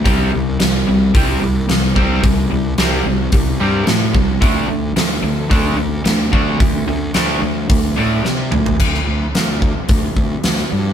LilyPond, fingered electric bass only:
\new Staff \with { instrumentName = "Fingered electric bass" } { \clef bass \time 4/4 \key d \mixolydian \tempo 4 = 110 c,8 c,8 c,8 c,8 c,8 c,8 c,8 c,8 | c,8 c,8 c,8 c,8 c,8 g,8 a,8 c,8 | d,8 d,8 d,8 d,8 d,8 d,8 d,8 d,8 | d,8 d,8 d,8 d,8 d,8 a,8 c8 d,8 |
d,8 d,8 d,4 d,8 d,8 d,8 g,8 | }